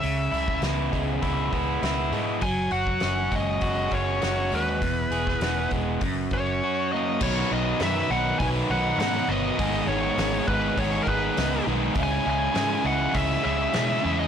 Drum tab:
CC |----------------|----------------|----------------|x---------------|
HH |o-o-o-o-o-o-o-o-|o-o-o-o-o-o-o-o-|o-o-o-o-o-o-----|----o---o---o---|
SD |----o-------o---|----o-------o---|---oo-----------|----o-------o---|
BD |---o--o-o-o-----|o--o--o-o-o-----|o--o--o-o-o-----|o-------o-------|

CC |----------------|----------------|
HH |o---o---o---o---|o---o---o---o---|
SD |----o-------o---|----o-------o---|
BD |o-----o-o-o-----|o-------o-------|